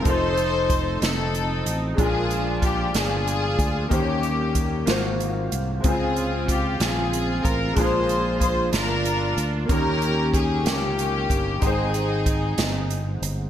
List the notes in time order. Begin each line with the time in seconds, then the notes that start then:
Already playing: F3 C4 D#4
0.02 F1 A3 D#4, kick, closed hi-hat
0.06 A3 D#4 F4 A4 C5
0.37 closed hi-hat
0.70 kick, closed hi-hat
1.02 F1 C4 D#4 A4, snare, closed hi-hat
1.35 closed hi-hat
1.66 A1, closed hi-hat
1.94 A#2 G#3 D4
1.98 A#1 G#3 A#3 D4 F4 G#4 A#4, kick, closed hi-hat
2.31 closed hi-hat
2.62 G4, kick, closed hi-hat
2.94 G1 D4 F4 G#4, snare, closed hi-hat
3.27 closed hi-hat
3.59 D2, kick, closed hi-hat
3.89 D#2 D#3 G3 A#3 C#4 D#4 G4 C5, kick, closed hi-hat
3.99 C#5
4.23 closed hi-hat
4.55 kick, closed hi-hat
4.86 G#1 G#2 F#3 A#3 C4 F4 F#4 F5, snare, closed hi-hat
4.90 C5
5.20 closed hi-hat
5.52 C2, closed hi-hat
5.80 C#3 G#3 C4 F4, closed hi-hat
5.84 C#2 C4 F4 G#4 C5, kick
6.16 closed hi-hat
6.48 G4, kick, closed hi-hat
6.80 A#1 C4 F4 G#4, snare, closed hi-hat
7.13 closed hi-hat
7.44 A1 A#4, kick, closed hi-hat
7.73 A#2 G#3 D4, closed hi-hat
7.77 A#1 A#3 F4 G#4 A#4 C5, kick
8.09 closed hi-hat
8.41 C5, kick, closed hi-hat
8.72 G1 D4 F4 A#4, snare, closed hi-hat
9.05 closed hi-hat
9.37 D2, closed hi-hat
9.65 D#3 A#3 C#4 G4, kick, closed hi-hat
9.69 D#2 C#4 D#4 A#4
10.02 closed hi-hat
10.34 G#4, kick, closed hi-hat
10.65 C#2 A#3 C#4 G4, snare, closed hi-hat
10.99 closed hi-hat
11.30 G1, kick, closed hi-hat
11.59 G#1 G#2 G#3 C4 D#4, kick, closed hi-hat
11.63 C4 D#4 G#4 C5 G5
11.94 closed hi-hat
12.26 kick, closed hi-hat
12.58 G1, snare, closed hi-hat
12.90 closed hi-hat
13.22 G1, closed hi-hat